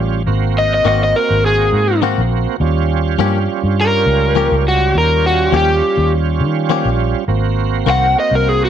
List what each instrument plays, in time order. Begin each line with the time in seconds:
Already playing: fingered electric bass A1, tonewheel organ G3 C#4 F4
0.27 fingered electric bass G#1, tonewheel organ A#3 C4 F#4
0.58 overdriven electric guitar D#5
0.74 overdriven electric guitar D#5
0.85 fingered electric bass G#1, clean electric guitar D#3 A#3 C4 F#4, overdriven electric guitar D#5
1.04 overdriven electric guitar D#5
1.16 overdriven electric guitar A#4
1.30 fingered electric bass G#1
1.46 overdriven electric guitar G#4
1.73 fingered electric bass G#2
2.02 clean electric guitar D#3 A#3 C4 F#4
2.18 fingered electric bass A#1
2.60 fingered electric bass D#2, tonewheel organ G3 C#4 F4
3.19 fingered electric bass G2, clean electric guitar F3 A#3 C#4 G4
3.64 fingered electric bass G2
3.81 overdriven electric guitar A#4
4.06 fingered electric bass C#2
4.35 clean electric guitar F3 A#3 C#4 G4
4.52 fingered electric bass C#2
4.68 overdriven electric guitar F#4
4.94 fingered electric bass D#2, overdriven electric guitar A#4
5.26 overdriven electric guitar F#4
5.52 fingered electric bass D#2, clean electric guitar F3 A#3 C#4 G4
5.57 overdriven electric guitar G4
5.97 fingered electric bass D#2
6.40 fingered electric bass D#3
6.70 clean electric guitar F3 A#3 C#4 G4
6.85 fingered electric bass A#1
7.28 fingered electric bass G#1, tonewheel organ A#3 C4 F#4
7.86 fingered electric bass C2, clean electric guitar D#3 A#3 C4 F#4, overdriven electric guitar F#5
8.20 overdriven electric guitar D#5
8.31 fingered electric bass C2
8.35 overdriven electric guitar A#4
8.49 overdriven electric guitar G#4
8.65 overdriven electric guitar F#4